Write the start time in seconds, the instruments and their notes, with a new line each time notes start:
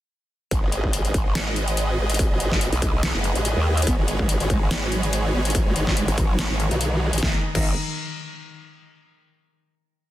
0.51 wobble bass G#1, supersaw synth G#3 G#4 B4 D#5, kick, closed hi-hat
0.63 wobble bass G#1
0.72 closed hi-hat
0.84 kick
0.93 closed hi-hat
1.05 wobble bass G#1, closed hi-hat
1.14 wobble bass G#1, kick, closed hi-hat
1.35 wobble bass G#1, snare, closed hi-hat
1.56 closed hi-hat
1.68 closed hi-hat
1.77 closed hi-hat
1.98 wobble bass G#1
2.10 closed hi-hat
2.14 closed hi-hat
2.19 kick, closed hi-hat
2.31 wobble bass G#1
2.40 closed hi-hat
2.52 kick, snare
2.61 closed hi-hat
2.73 wobble bass B1, closed hi-hat
2.82 kick, closed hi-hat
3.03 snare, closed hi-hat
3.14 wobble bass F#1
3.24 closed hi-hat
3.35 wobble bass A1, closed hi-hat
3.45 closed hi-hat
3.56 wobble bass D#2
3.77 closed hi-hat
3.82 closed hi-hat
3.87 wobble bass G#1, cello B3, supersaw synth C#5, kick, closed hi-hat
3.98 wobble bass G#1, cello D#3
4.08 cello D#3, closed hi-hat
4.19 cello G#3, kick
4.29 cello D#3, closed hi-hat
4.40 wobble bass G#1, cello D#3, closed hi-hat
4.50 wobble bass G#1, cello G#3, kick, closed hi-hat
4.61 cello D#3
4.71 wobble bass G#1, cello D#3, snare, closed hi-hat
4.82 cello D#3
4.92 cello F#3, closed hi-hat
5.03 cello D#3, closed hi-hat
5.13 cello D#3, closed hi-hat
5.24 cello D#3
5.34 wobble bass G#1, cello B3
5.45 cello D#3, closed hi-hat
5.50 closed hi-hat
5.55 cello D#3, kick, closed hi-hat
5.66 wobble bass G#1, cello G#3
5.76 cello D#3, closed hi-hat
5.87 cello D#3, kick, snare
5.97 cello G#3, closed hi-hat
6.08 wobble bass G#1, cello D#3, closed hi-hat
6.18 cello D#3, kick, closed hi-hat
6.29 cello F#3
6.39 cello D#3, snare, closed hi-hat
6.50 wobble bass G#1, cello D#3
6.60 cello D#3, closed hi-hat
6.71 wobble bass B1, cello D#3, closed hi-hat
6.81 cello D#3, closed hi-hat
6.92 cello D#3
7.02 cello D#3
7.13 wobble bass A1, cello D#3, closed hi-hat
7.18 closed hi-hat
7.23 wobble bass G#1, cello D#3, supersaw synth G#3 D#5, kick, snare
7.55 wobble bass G#1, cello D#3, kick, crash